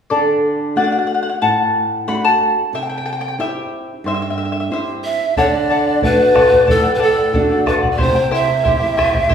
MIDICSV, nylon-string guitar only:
0, 0, Header, 1, 2, 480
1, 0, Start_track
1, 0, Tempo, 657174
1, 77, Time_signature, 4, 2, 24, 8
1, 6826, End_track
2, 0, Start_track
2, 0, Title_t, "Nylon-string guitar"
2, 0, Program_c, 0, 24
2, 79, Note_on_c, 0, 50, 55
2, 544, Note_off_c, 0, 50, 0
2, 554, Note_on_c, 0, 57, 43
2, 558, Note_on_c, 0, 62, 39
2, 564, Note_on_c, 0, 66, 46
2, 940, Note_off_c, 0, 57, 0
2, 942, Note_off_c, 0, 62, 0
2, 946, Note_off_c, 0, 66, 0
2, 1038, Note_on_c, 0, 45, 56
2, 1504, Note_off_c, 0, 45, 0
2, 1515, Note_on_c, 0, 57, 38
2, 1518, Note_on_c, 0, 62, 36
2, 1525, Note_on_c, 0, 66, 42
2, 1901, Note_off_c, 0, 57, 0
2, 1902, Note_off_c, 0, 62, 0
2, 1907, Note_off_c, 0, 66, 0
2, 1993, Note_on_c, 0, 48, 52
2, 2462, Note_off_c, 0, 48, 0
2, 2473, Note_on_c, 0, 60, 42
2, 2476, Note_on_c, 0, 64, 38
2, 2482, Note_on_c, 0, 67, 47
2, 2861, Note_off_c, 0, 60, 0
2, 2861, Note_off_c, 0, 64, 0
2, 2862, Note_off_c, 0, 67, 0
2, 2952, Note_on_c, 0, 43, 59
2, 3421, Note_off_c, 0, 43, 0
2, 3435, Note_on_c, 0, 60, 39
2, 3441, Note_on_c, 0, 64, 37
2, 3444, Note_on_c, 0, 67, 45
2, 3821, Note_off_c, 0, 60, 0
2, 3825, Note_off_c, 0, 64, 0
2, 3825, Note_off_c, 0, 67, 0
2, 3923, Note_on_c, 0, 50, 60
2, 4387, Note_off_c, 0, 50, 0
2, 4404, Note_on_c, 0, 57, 47
2, 4408, Note_on_c, 0, 62, 46
2, 4415, Note_on_c, 0, 66, 55
2, 4786, Note_off_c, 0, 57, 0
2, 4788, Note_off_c, 0, 62, 0
2, 4793, Note_off_c, 0, 66, 0
2, 4886, Note_on_c, 0, 45, 63
2, 5349, Note_off_c, 0, 45, 0
2, 5367, Note_on_c, 0, 57, 45
2, 5372, Note_on_c, 0, 62, 42
2, 5375, Note_on_c, 0, 66, 49
2, 5748, Note_off_c, 0, 57, 0
2, 5751, Note_off_c, 0, 62, 0
2, 5752, Note_off_c, 0, 66, 0
2, 5845, Note_on_c, 0, 48, 63
2, 6308, Note_off_c, 0, 48, 0
2, 6323, Note_on_c, 0, 60, 49
2, 6329, Note_on_c, 0, 64, 47
2, 6333, Note_on_c, 0, 67, 52
2, 6705, Note_off_c, 0, 60, 0
2, 6709, Note_off_c, 0, 64, 0
2, 6711, Note_off_c, 0, 67, 0
2, 6826, End_track
0, 0, End_of_file